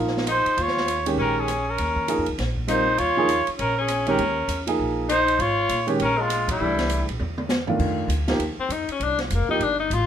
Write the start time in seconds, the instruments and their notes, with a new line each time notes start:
Already playing: upright bass A#1, grand piano F3 A#3 D#4 F4
0.08 snare
0.17 snare
0.27 tenor saxophone D#4, cross-stick, hi-hat pedal, ride
0.31 trumpet C5
0.46 muted upright bass stroke, ride
0.57 upright bass D#2, tenor saxophone F4, ride
0.62 trumpet C#5
0.68 snare
0.77 snare
0.88 hi-hat pedal, ride
1.06 grand piano D#3 G#3 C#4 G4, ride
1.17 upright bass A#1, tenor saxophone C#4, trumpet A#4
1.38 tenor saxophone C#4, trumpet G#4
1.48 cross-stick, hi-hat pedal, ride
1.68 tenor saxophone C#4, trumpet A#4
1.78 upright bass D#2, ride
1.96 kick
2.08 grand piano F3 A#3 D#4 G#4, hi-hat pedal, ride
2.18 upright bass F2
2.26 upright bass C#2, ride
2.38 upright bass A#1, snare, ride
2.56 kick
2.67 grand piano G3 C4 F4 A#4, tenor saxophone D#4, trumpet C5, cross-stick, hi-hat pedal, ride
2.98 upright bass D#2, tenor saxophone F4, trumpet C#5, ride
3.17 grand piano F3 A#3 D#4 G#4
3.29 hi-hat pedal, ride
3.47 muted upright bass stroke, ride
3.58 upright bass A#1, tenor saxophone C#4, trumpet A#4, ride
3.78 tenor saxophone C#4, trumpet G#4
3.88 cross-stick, hi-hat pedal, ride
4.07 grand piano D#3 G#3 C#4 G4, tenor saxophone C#4, trumpet A#4, ride
4.18 upright bass D#2, ride
4.48 upright bass E2, hi-hat pedal, ride
4.67 grand piano F3 A#3 D#4 G#4, ride
4.79 upright bass A#1
5.09 tenor saxophone D#4, trumpet C5, cross-stick, hi-hat pedal, ride
5.28 ride
5.39 upright bass G#1, tenor saxophone F4, trumpet C#5, ride
5.69 upright bass A#2, hi-hat pedal, ride
5.87 grand piano D#3 G#3 C#4 G4, ride
6.00 upright bass A#1, tenor saxophone C#4, trumpet A#4, ride
6.18 tenor saxophone G#3, trumpet F4
6.30 cross-stick, hi-hat pedal, ride
6.48 tenor saxophone G3, trumpet E4, kick, ride
6.60 upright bass C2, grand piano E3 A3 D4 G4
6.79 snare, ride
6.89 hi-hat pedal, ride
7.09 upright bass A#1, ride
7.20 upright bass E2, mid tom
7.38 mid tom
7.49 snare, hi-hat pedal
7.67 grand piano D#3 A3 D4 F4, floor tom
7.79 upright bass F2, kick, crash
8.08 upright bass D2, hi-hat pedal, ride
8.27 grand piano F3 A#3 D#4 G4, snare, ride
8.39 upright bass D#2, ride
8.58 tenor saxophone C4, muted upright bass stroke
8.69 upright bass F2, tenor saxophone D#4, hi-hat pedal, ride
8.88 tenor saxophone C#4, muted upright bass stroke, ride
9.00 upright bass C2, tenor saxophone D4, ride
9.18 tenor saxophone F3, snare, ride
9.30 upright bass F1, hi-hat pedal, ride
9.34 tenor saxophone A#3
9.48 grand piano F3 A#3 D#4 G4, tenor saxophone D#4, muted upright bass stroke
9.59 upright bass G1, tenor saxophone D4, ride
9.80 tenor saxophone D#4
9.90 upright bass A1, tenor saxophone F4, hi-hat pedal, ride